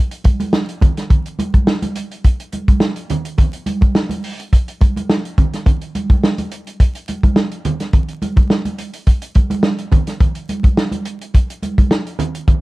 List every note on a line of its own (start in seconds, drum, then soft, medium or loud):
0.11 closed hi-hat medium
0.24 kick medium
0.24 closed hi-hat medium
0.24 high conga soft
0.40 closed hi-hat soft
0.40 high conga medium
0.53 snare loud
0.53 muted conga soft
0.69 closed hi-hat soft
0.81 kick medium
0.81 closed hi-hat medium
0.81 muted conga soft
0.81 low conga medium
0.97 snare soft
0.97 closed hi-hat medium
1.10 kick loud
1.10 closed hi-hat medium
1.10 muted conga soft
1.10 low conga medium
1.26 closed hi-hat soft
1.39 closed hi-hat medium
1.39 muted conga soft
1.39 high conga medium
1.54 kick loud
1.54 closed hi-hat medium
1.54 high conga medium
1.67 snare loud
1.67 muted conga soft
1.82 closed hi-hat medium
1.82 high conga medium
1.96 closed hi-hat medium
1.96 muted conga soft
2.11 closed hi-hat medium
2.24 kick medium
2.24 closed hi-hat medium
2.24 muted conga soft
2.40 closed hi-hat medium
2.52 closed hi-hat medium
2.52 high conga medium
2.68 kick medium
2.68 closed hi-hat medium
2.68 high conga medium
2.80 snare loud
2.80 muted conga soft
2.96 closed hi-hat medium
3.10 closed hi-hat medium
3.10 muted conga soft
3.10 low conga medium
3.25 closed hi-hat medium
3.38 kick medium
3.38 closed hi-hat medium
3.38 low conga medium
3.53 closed hi-hat medium
3.66 closed hi-hat medium
3.66 muted conga soft
3.66 high conga medium
3.81 kick loud
3.81 closed hi-hat soft
3.81 high conga medium
3.95 snare loud
3.95 muted conga soft
4.09 closed hi-hat medium
4.09 high conga medium
4.24 open hi-hat medium
4.40 closed hi-hat medium
4.53 kick medium
4.53 closed hi-hat medium
4.68 closed hi-hat medium
4.81 kick medium
4.81 closed hi-hat medium
4.81 muted conga soft
4.81 high conga medium
4.96 closed hi-hat medium
4.96 high conga medium
5.09 snare loud
5.25 closed hi-hat soft
5.38 kick loud
5.38 closed hi-hat medium
5.38 muted conga soft
5.38 low conga medium
5.53 snare soft
5.53 closed hi-hat medium
5.66 kick loud
5.66 closed hi-hat medium
5.66 muted conga soft
5.66 low conga medium
5.81 closed hi-hat medium
5.95 closed hi-hat medium
5.95 high conga medium
6.10 kick medium
6.10 closed hi-hat soft
6.10 high conga medium
6.23 snare loud
6.38 closed hi-hat medium
6.38 high conga medium
6.51 closed hi-hat medium
6.67 closed hi-hat medium
6.80 kick medium
6.80 closed hi-hat medium
6.80 muted conga soft
6.95 closed hi-hat medium
7.08 closed hi-hat medium
7.08 muted conga soft
7.08 high conga soft
7.23 kick medium
7.23 closed hi-hat medium
7.23 high conga medium
7.36 snare loud
7.36 muted conga soft
7.51 closed hi-hat soft
7.65 closed hi-hat medium
7.65 muted conga soft
7.65 low conga medium
7.80 snare soft
7.80 closed hi-hat medium
7.93 kick loud
7.93 closed hi-hat medium
7.93 muted conga soft
7.93 low conga medium
8.08 closed hi-hat medium
8.22 closed hi-hat medium
8.22 high conga medium
8.36 kick loud
8.36 closed hi-hat soft
8.36 high conga medium
8.50 snare loud
8.50 muted conga soft
8.65 closed hi-hat medium
8.65 high conga medium
8.78 closed hi-hat medium
8.78 muted conga soft
8.93 closed hi-hat medium
9.07 kick medium
9.07 closed hi-hat medium
9.07 muted conga soft
9.22 closed hi-hat medium
9.35 kick medium
9.35 closed hi-hat medium
9.35 muted conga soft
9.35 high conga medium
9.50 closed hi-hat medium
9.50 high conga medium
9.63 snare loud
9.78 closed hi-hat soft
9.92 kick medium
9.92 closed hi-hat medium
9.92 low conga medium
10.07 snare soft
10.07 closed hi-hat medium
10.20 kick loud
10.20 closed hi-hat medium
10.20 muted conga soft
10.20 low conga medium
10.35 closed hi-hat medium
10.49 closed hi-hat medium
10.49 high conga medium
10.63 kick medium
10.63 closed hi-hat medium
10.63 high conga medium
10.77 snare loud
10.77 muted conga soft
10.91 closed hi-hat medium
10.91 high conga medium
11.05 closed hi-hat medium
11.21 closed hi-hat medium
11.34 kick medium
11.34 closed hi-hat medium
11.34 muted conga soft
11.50 closed hi-hat medium
11.62 closed hi-hat medium
11.62 muted conga soft
11.62 high conga medium
11.78 kick medium
11.78 closed hi-hat medium
11.78 high conga medium
11.91 snare loud
11.91 muted conga soft
12.07 closed hi-hat soft
12.19 closed hi-hat medium
12.19 low conga medium
12.35 closed hi-hat medium
12.48 kick loud
12.48 closed hi-hat medium
12.48 muted conga soft
12.48 low conga medium